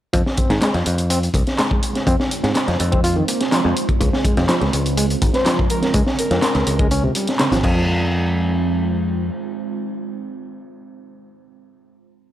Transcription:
0.13 F2 F3 G#3 C4 D#4 F4 C5, kick, closed hi-hat
0.26 snare
0.37 C4, kick, closed hi-hat
0.50 G#2 D#3, snare, closed hi-hat
0.62 G#3, snare, clap, closed hi-hat
0.74 F2, snare, closed hi-hat
0.86 F2, closed hi-hat
0.98 closed hi-hat
1.10 C4, closed hi-hat
1.23 closed hi-hat
1.34 C2, kick, closed hi-hat
1.47 snare, closed hi-hat
1.58 G#3, snare, clap, closed hi-hat
1.71 kick
1.83 closed hi-hat
1.95 snare, closed hi-hat
2.07 F2 C4, kick, closed hi-hat
2.20 snare
2.31 closed hi-hat
2.44 G#2, snare, closed hi-hat
2.55 snare, clap, closed hi-hat
2.68 F2, snare, closed hi-hat
2.80 F2, closed hi-hat
2.92 C4, kick, closed hi-hat
3.04 F4, closed hi-hat
3.16 D#3
3.28 A#3, closed hi-hat
3.41 snare, closed hi-hat
3.52 F3, snare, clap, closed hi-hat
3.64 F2 G#3
3.77 closed hi-hat
3.89 kick, closed hi-hat
4.00 C#2 C#3 C#4, kick, closed hi-hat
4.13 snare
4.25 G#3, kick, closed hi-hat
4.37 F2 C3, snare, closed hi-hat
4.49 F3, snare, clap, closed hi-hat
4.61 C#2, snare, closed hi-hat
4.73 C#2, closed hi-hat
4.86 closed hi-hat
4.97 G#3, closed hi-hat
5.10 closed hi-hat
5.22 G#1, kick, closed hi-hat
5.34 C5, snare, closed hi-hat
5.46 F3, snare, clap, closed hi-hat
5.59 kick
5.70 A#4, closed hi-hat
5.82 A#4, snare, closed hi-hat
5.94 C#2 G#3 A#4, kick, closed hi-hat
6.07 snare
6.18 A#4, closed hi-hat
6.31 F2, snare, closed hi-hat
6.42 snare, clap, closed hi-hat
6.55 C#2, snare, closed hi-hat
6.67 C#2, closed hi-hat
6.79 G#3, kick, closed hi-hat
6.91 C#4, closed hi-hat
7.04 C3
7.15 G3, closed hi-hat
7.27 snare, closed hi-hat
7.39 C#3, snare, clap, closed hi-hat
7.52 G#1 F3, snare, closed hi-hat
7.64 F2 F3 G#3 C4 D#4 F4 C5, kick, crash

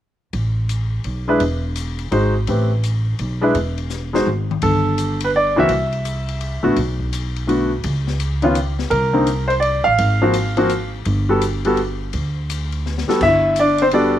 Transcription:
0.33 A1, kick, ride
0.69 hi-hat pedal, ride
1.04 B1, ride
1.28 G#3 D4 E4 B4
1.40 E1, kick, ride
1.76 hi-hat pedal, ride
1.99 ride
2.11 G#1 G#3 D#4 F#4 C5, ride
2.47 A1 A3 C4 G4 B4, kick, ride
2.83 hi-hat pedal, ride
3.19 B1, ride
3.41 G#3 D4 E4 B4
3.55 E1, kick, ride
3.78 ride
3.90 snare, hi-hat pedal
4.13 G#3 D#4 F#4 C5, snare
4.27 G#1, mid tom
4.51 mid tom
4.62 G1 A4, kick, ride
4.98 hi-hat pedal, ride
5.20 B4, ride
5.36 D5
5.56 C#2 E3 A#3 C4 F#4 E5
5.69 C2, kick, ride
5.92 ride
6.05 hi-hat pedal, ride
6.28 ride
6.41 ride
6.63 A#1 D3 A3 B3 F#4
6.76 B1, kick, ride
7.00 kick
7.13 hi-hat pedal, ride
7.36 ride
7.47 D3 A3 B3 F#4, ride
7.84 C#2, kick, ride
8.07 snare
8.20 hi-hat pedal, ride
8.42 D#3 B3 C#4 F4, ride
8.55 hi-hat pedal, ride
8.79 snare
8.90 C2 A#4, kick, ride
9.13 D3 A#3 C4 D#4
9.27 hi-hat pedal, ride
9.48 C5, ride
9.60 D5, ride
9.84 A1 F5
9.98 G#1, kick, ride
10.22 F3 A#3 C4 F#4
10.33 hi-hat pedal, ride
10.57 F3 A#3 C4 F#4, ride
10.70 hi-hat pedal, ride
11.05 G1, kick, ride
11.29 G3 B3 F#4 A4
11.41 hi-hat pedal, ride
11.65 G3 B3 F#4 A4, ride
11.77 ride
12.13 D2, kick, ride
12.50 hi-hat pedal, ride
12.72 ride
12.86 snare
12.98 snare
13.08 G3 B3 F#4 A4, snare
13.21 G1 E4 E5, kick, crash
13.56 D5, hi-hat pedal, ride
13.60 D4
13.78 C4 C5, ride
13.91 G3 B3 D4 F#4 A4 D5, ride

